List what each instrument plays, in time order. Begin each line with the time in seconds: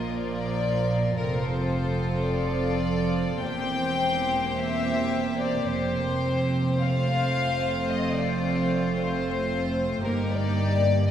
Already playing: double bass section A#1, cello section A#2, viola section F3 A#3, violin section F4 A#4 D#5
0.12 violin section D5
1.17 double bass section F1, cello section F2, viola section F3 C4, violin section F4 A4 A#4
1.45 violin section C5
2.26 violin section D5
3.41 double bass section E1, cello section E2, viola section A#3, violin section G4 C5 G5
4.56 violin section E5
5.41 violin section D5
5.65 double bass section F1, cello section F2, viola section C4, violin section C5
6.81 viola section A3, violin section F4 F5
7.90 violin section D#5
8.17 violin section D5
8.98 violin section C5
10.04 double bass section G1, cello section G2, viola section A#3, violin section D#4 G4 A#4
10.31 violin section D5